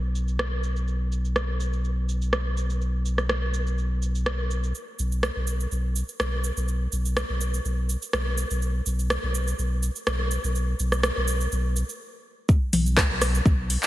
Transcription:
0.00 4.72 B1 medium
0.15 cabasa medium
0.28 cabasa soft
0.39 cross-stick loud
0.39 cabasa soft
0.63 cabasa medium
0.76 cabasa soft
0.88 cabasa soft
1.12 cabasa medium
1.25 cabasa soft
1.36 cross-stick medium
1.36 cabasa soft
1.60 cabasa medium
1.73 cabasa soft
1.84 cabasa soft
2.09 cabasa medium
2.22 cabasa soft
2.33 cross-stick medium
2.33 cabasa soft
2.57 cabasa medium
2.70 cabasa soft
2.81 cabasa soft
3.05 cabasa medium
3.18 cross-stick medium
3.18 cabasa soft
3.29 cross-stick loud
3.29 cabasa soft
3.54 cabasa medium
3.67 cabasa soft
3.78 cabasa soft
4.02 cabasa medium
4.15 cabasa medium
4.26 cross-stick loud
4.26 cabasa soft
4.51 cabasa medium
4.64 cabasa soft
4.75 cabasa soft
4.99 5.30 B1 medium
4.99 cabasa medium
5.12 cabasa soft
5.23 cross-stick loud
5.23 cabasa soft
5.36 5.66 B1 medium
5.47 cabasa medium
5.60 cabasa medium
5.71 6.03 B1 medium
5.71 cabasa soft
5.96 cabasa medium
6.09 cabasa medium
6.20 6.51 B1 medium
6.20 cross-stick loud
6.20 cabasa soft
6.44 cabasa medium
6.57 6.87 B1 loud
6.57 cabasa soft
6.68 cabasa soft
6.92 7.24 B1 loud
6.92 cabasa medium
7.05 cabasa medium
7.17 cross-stick loud
7.17 cabasa soft
7.29 7.60 B1 medium
7.41 cabasa medium
7.54 cabasa medium
7.65 7.96 B1 medium
7.65 cabasa soft
7.89 cabasa medium
8.02 cabasa medium
8.13 8.45 B1 medium
8.13 cross-stick loud
8.13 cabasa soft
8.38 cabasa medium
8.50 8.81 B1 medium
8.50 cabasa medium
8.62 cabasa soft
8.86 9.17 B1 loud
8.86 cabasa medium
8.99 cabasa medium
9.10 cross-stick loud
9.10 cabasa soft
9.23 9.53 B1 medium
9.35 cabasa loud
9.47 cabasa medium
9.58 9.90 B1 medium
9.58 cabasa soft
9.83 cabasa loud
9.96 cabasa medium
10.07 10.38 B1 medium
10.07 cross-stick loud
10.07 cabasa soft
10.31 cabasa loud
10.44 10.74 B1 loud
10.44 cabasa medium
10.55 cabasa soft
10.79 11.11 B1 loud
10.79 cabasa medium
10.92 cross-stick medium
10.92 cabasa medium
11.03 cross-stick loud
11.03 cabasa soft
11.17 11.47 B1 medium
11.28 cabasa loud
11.41 cabasa medium
11.52 11.83 B1 medium
11.52 cabasa soft
11.76 cabasa medium
11.89 cabasa medium
12.49 kick loud
12.49 cabasa soft
12.73 13.04 B1 loud
12.73 open hi-hat medium
12.73 mid tom medium
12.73 cabasa medium
12.86 cabasa medium
12.97 kick loud
12.97 cross-stick loud
12.97 clap loud
12.97 cabasa soft
13.10 13.41 B1 medium
13.22 cross-stick medium
13.22 open hi-hat loud
13.22 cabasa medium
13.35 cabasa medium
13.46 13.77 B1 medium
13.46 kick loud
13.46 cabasa soft
13.70 open hi-hat medium
13.70 cabasa medium
13.83 clap soft
13.83 cabasa medium

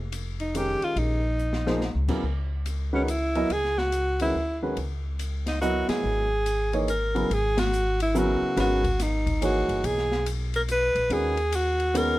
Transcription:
0.00 0.77 F1 medium
0.12 hi-hat pedal soft
0.12 ride medium
0.40 0.58 D#4 medium
0.40 ride soft
0.54 1.18 D#3 soft
0.54 1.19 G#3 soft
0.54 1.19 C#4 soft
0.54 1.19 G4 soft
0.54 0.86 G4 medium
0.54 1.19 A#4 medium
0.54 hi-hat pedal soft
0.54 ride medium
0.81 1.00 F4 medium
0.81 muted upright bass stroke soft
0.81 ride soft
0.96 1.91 A#1 medium
0.96 2.09 D#4 medium
0.96 ride soft
1.39 hi-hat pedal soft
1.53 snare soft
1.66 1.80 F3 medium
1.66 1.80 A#3 medium
1.66 1.80 D#4 medium
1.66 1.80 G#4 medium
1.66 1.80 C5 medium
1.66 snare medium
1.81 snare soft
1.95 2.08 C#2 medium
2.08 2.22 C#3 medium
2.08 2.22 F#3 soft
2.08 2.22 B3 soft
2.08 2.22 E4 medium
2.08 2.22 A#4 medium
2.08 kick medium
2.08 crash medium
2.23 3.46 C#2 medium
2.66 hi-hat pedal medium
2.66 ride medium
2.93 3.06 D#3 medium
2.93 3.06 G#3 medium
2.93 3.06 C#4 medium
2.93 3.06 F#4 medium
2.93 3.06 B4 medium
3.04 3.12 D#4 medium
3.08 3.54 E4 medium
3.08 hi-hat pedal soft
3.08 ride medium
3.35 3.49 F#3 medium
3.35 3.49 B3 medium
3.35 3.49 E4 medium
3.35 3.49 A#4 medium
3.35 3.49 D#5 medium
3.35 ride soft
3.50 4.30 C#2 medium
3.50 3.80 G#4 medium
3.50 ride medium
3.64 snare soft
3.78 4.20 F#4 medium
3.78 snare soft
3.92 hi-hat pedal soft
3.92 ride medium
4.19 4.33 D#3 medium
4.19 4.34 G#3 medium
4.19 4.34 C#4 soft
4.19 4.60 E4 medium
4.19 4.34 F#4 medium
4.19 4.34 B4 medium
4.19 ride medium
4.34 4.74 D2 medium
4.62 4.75 D#3 medium
4.62 4.75 G#3 soft
4.62 4.76 C#4 soft
4.62 4.76 F#4 soft
4.62 4.76 B4 medium
4.77 5.84 C#2 medium
4.77 ride soft
5.19 hi-hat pedal soft
5.19 ride medium
5.46 5.61 D#4 medium
5.46 snare soft
5.46 ride medium
5.61 6.25 F#3 medium
5.61 6.25 B3 medium
5.61 6.26 E4 medium
5.61 5.87 F#4 medium
5.61 6.26 A#4 medium
5.61 6.26 D#5 medium
5.61 hi-hat pedal medium
5.89 6.84 G#4 medium
5.89 muted upright bass stroke soft
5.89 snare medium
5.89 ride medium
6.04 7.26 G#1 medium
6.46 hi-hat pedal soft
6.46 ride medium
6.73 6.87 E3 medium
6.73 6.86 A#3 medium
6.73 6.87 D#4 medium
6.73 6.87 G#4 medium
6.73 6.87 C#5 medium
6.73 ride soft
6.88 7.35 A#4 medium
6.88 hi-hat pedal medium
6.88 ride medium
7.15 7.28 C#3 medium
7.15 7.28 F#3 soft
7.15 7.29 B3 medium
7.15 7.29 E4 medium
7.15 7.29 A#4 medium
7.15 ride soft
7.30 8.37 G#1 medium
7.30 ride medium
7.34 7.61 G#4 medium
7.57 8.01 F#4 medium
7.57 snare medium
7.57 ride medium
7.73 hi-hat pedal soft
8.00 8.19 E4 medium
8.00 ride medium
8.14 8.78 C#3 medium
8.14 8.79 F#3 medium
8.14 8.79 B3 medium
8.14 8.79 E4 medium
8.14 8.58 F#4 medium
8.14 8.79 A#4 medium
8.14 hi-hat pedal medium
8.42 muted upright bass stroke soft
8.57 9.64 G#1 medium
8.57 8.81 D#3 medium
8.57 8.81 G#3 medium
8.57 8.81 C#4 medium
8.57 8.81 F#4 medium
8.57 9.04 F#4 medium
8.57 8.81 B4 medium
8.57 snare soft
8.57 ride medium
8.84 kick medium
8.84 ride soft
8.99 9.43 D#4 medium
8.99 snare soft
8.99 hi-hat pedal medium
8.99 ride medium
9.27 kick medium
9.27 ride soft
9.41 10.05 E3 medium
9.41 10.05 A#3 soft
9.41 10.05 D#4 medium
9.41 9.88 F#4 medium
9.41 10.06 G#4 soft
9.41 10.06 C#5 medium
9.41 hi-hat pedal soft
9.41 ride medium
9.69 9.82 G1 medium
9.69 ride soft
9.84 10.91 B1 medium
9.84 10.27 G#4 loud
9.84 ride medium
9.98 snare soft
10.12 snare soft
10.26 hi-hat pedal soft
10.26 ride medium
10.54 10.62 A#4 medium
10.54 ride soft
10.68 11.15 B4 loud
10.68 hi-hat pedal medium
10.68 ride medium
10.95 11.09 A#1 medium
10.95 ride soft
11.10 12.19 D#2 medium
11.10 11.35 D#3 medium
11.10 11.35 G#3 soft
11.10 11.35 C#4 medium
11.10 11.35 F#4 medium
11.10 11.57 G#4 loud
11.10 11.35 B4 medium
11.10 ride medium
11.37 ride soft
11.52 11.99 F#4 medium
11.52 hi-hat pedal soft
11.52 ride medium
11.80 ride soft
11.94 12.19 D#3 medium
11.94 12.19 G#3 medium
11.94 12.19 B3 medium
11.94 12.19 C#4 medium
11.94 12.19 F#4 medium
11.94 12.19 A#4 medium
11.94 hi-hat pedal medium
11.94 ride medium

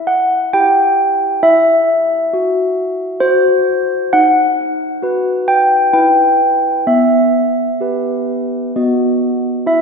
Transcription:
0.00 0.52 E4 soft
0.07 0.51 F#5 medium
0.53 1.39 E4 soft
0.53 1.39 G4 soft
0.53 1.39 G5 medium
1.43 4.09 E4 medium
1.43 3.17 E5 loud
2.33 3.19 F#4 soft
3.20 4.09 F#4 soft
3.20 4.09 C5 medium
4.13 5.90 D#4 medium
4.13 5.44 F#5 medium
5.02 5.89 F#4 soft
5.02 5.90 B4 soft
5.48 5.92 G5 medium
5.93 6.82 E4 medium
5.93 6.83 B4 soft
5.93 6.82 G5 medium
6.87 8.70 B3 soft
6.87 8.70 E5 medium
7.81 8.70 G4 soft
7.81 8.70 B4 soft
8.76 9.65 B3 soft
8.76 9.63 F#4 soft
8.76 9.63 D#5 soft
9.66 9.82 E4 soft
9.66 9.82 E5 medium

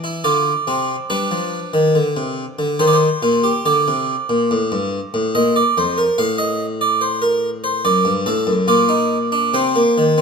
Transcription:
0.00 0.23 E3 medium
0.00 0.25 E4 medium
0.00 0.21 E5 medium
0.24 0.51 D3 medium
0.24 0.51 F4 medium
0.24 1.08 D5 medium
0.67 0.94 C3 medium
0.67 0.94 C4 medium
1.10 1.31 G3 medium
1.10 2.77 D4 medium
1.10 2.77 B4 medium
1.31 1.58 F3 medium
1.74 1.95 D#3 medium
1.95 2.16 D3 medium
2.17 2.43 C3 medium
2.59 2.80 D3 medium
2.79 3.07 D#3 medium
2.79 3.07 D#4 medium
2.79 2.87 C5 medium
2.88 2.95 D5 medium
2.93 3.63 C5 medium
3.22 3.49 A#2 medium
3.22 3.44 F4 medium
3.44 3.65 G4 medium
3.66 3.86 D3 medium
3.66 5.31 D5 medium
3.88 4.14 C3 medium
4.29 4.50 A#2 medium
4.51 4.71 A2 medium
4.72 4.98 G2 medium
5.14 5.34 A2 medium
5.35 5.61 A#2 medium
5.35 5.55 D#5 medium
5.56 5.76 D5 medium
5.77 6.03 F2 medium
5.77 5.98 C5 medium
5.98 6.18 A#4 medium
6.18 7.82 A2 medium
6.18 6.39 F5 medium
6.38 6.64 D#5 medium
6.81 7.01 D5 medium
7.01 7.22 C5 medium
7.22 7.48 A#4 medium
7.64 7.85 C5 medium
7.85 8.06 F#2 medium
7.85 8.11 D5 medium
8.05 8.26 G2 medium
8.26 8.47 A2 medium
8.26 8.53 A4 medium
8.47 8.68 F#2 medium
8.68 9.51 A#2 medium
8.68 8.89 F4 medium
8.68 9.52 D5 medium
8.89 9.16 D#4 medium
9.32 9.54 D4 medium
9.54 9.81 C3 medium
9.54 9.76 C4 medium
9.54 10.21 C5 medium
9.76 10.03 A#3 medium
9.98 10.21 D#3 medium
10.18 10.21 C4 medium

